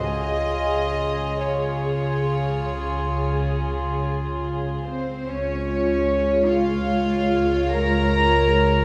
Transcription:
0.01 C#2 C#3 F4 G#4 D#5
1.37 F4 G#4 C#5
4.86 C4 C5
5.29 C#2 G#3 C#4 F4 C#5
6.46 F4 F5
7.73 A#4 A#5

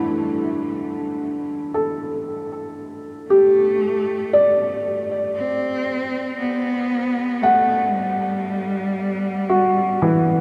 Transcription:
Already playing: D3 A3 E4
0.20 G3
1.74 A4
3.28 A3 G4
4.33 D5
5.35 C4
6.39 B3
7.41 A3 F#5
7.93 G3
9.49 F#4
10.02 E3

